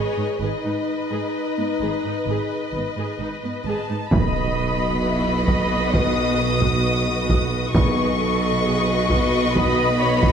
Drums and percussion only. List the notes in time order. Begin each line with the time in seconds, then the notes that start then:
4.12 taiko
5.48 taiko
5.94 taiko
6.62 taiko
7.30 taiko
7.75 taiko
9.10 taiko
9.55 taiko
10.22 taiko